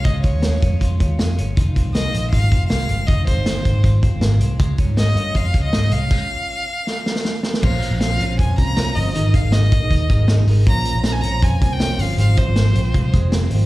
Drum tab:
CC |----------------|----------------|----------------|----------------|
HH |x-x-x-x-x-x-x-x-|x-x-x-x-x-x-x-x-|x-x-x-x-x-x-x-x-|x-x-x-x-x-x-x-x-|
SD |----o-------o---|----o-------o---|----o-------o---|----o-------o---|
BD |o-o---o-o-o-----|o-o-----o-o-----|o-o---o-o-o-----|o-o-----o-o-----|

CC |x---------------|x---------------|----------------|----------------|
HH |----------------|--x-x-x-x-x-x-o-|x-x-x-x-x-x-x-o-|x-x-x-x-x-x-x-o-|
SD |--------o-ooo-oo|----o-------o---|----o-------o---|----o-------o---|
BD |o---------------|o-------o-o-----|--o---o-o-o-----|o-------o-o-----|

CC |----------------|
HH |x-x-x-x-x-x-x-o-|
SD |----o-------o---|
BD |--o-----o-o-----|